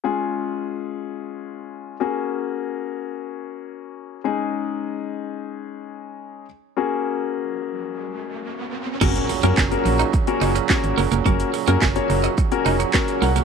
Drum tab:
CC |----------------|----------------|----------------|----------------|
HH |----------------|----------------|----------------|----------------|
SH |----------------|----------------|----------------|----------------|
CP |----------------|----------------|----------------|----------------|
SD |----------------|----------------|----------------|----------------|
BD |----------------|----------------|----------------|----------------|

CC |x---------------|----------------|
HH |-xox-xox-xox-xox|-xox-xox-xox-xox|
SH |xxxxxxxxxxxxxxxx|xxxxxxxxxxxxxxxx|
CP |----x-------x---|----x-------x---|
SD |----o-------o---|----o-------o---|
BD |o---o---o---o---|o---o---o---o---|